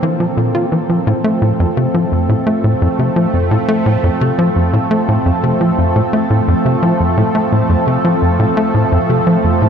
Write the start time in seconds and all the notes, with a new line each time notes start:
Already playing: F3 A#3 C4 A4
0.03 E3
0.20 F3
0.37 A#2
0.55 F4
0.72 E3
0.90 F3
1.07 A2
1.18 A3
1.24 A3
1.42 A2
1.60 F2
1.77 C3
1.94 F3
2.12 F2
2.29 A2
2.47 A3
2.64 A2
2.82 F2
2.99 C3
3.16 F3
3.34 F2
3.51 A2
3.68 A3
3.86 A2
4.04 F2
4.21 C3
4.39 F3
4.56 F2
4.73 A2
4.91 A3
5.08 A2
5.26 F2
5.43 C3
5.61 F3
5.78 F2
5.96 A2
6.13 A3
6.30 A2
6.48 F2
6.65 C3
6.83 F3
7.00 F2
7.17 A2
7.35 A3
7.52 A2
7.69 F2
7.87 C3
8.05 F3
8.22 F2
8.39 A2
8.57 A3
8.74 A2
8.92 F2
9.09 C3
9.27 F3
9.44 F2
9.62 A2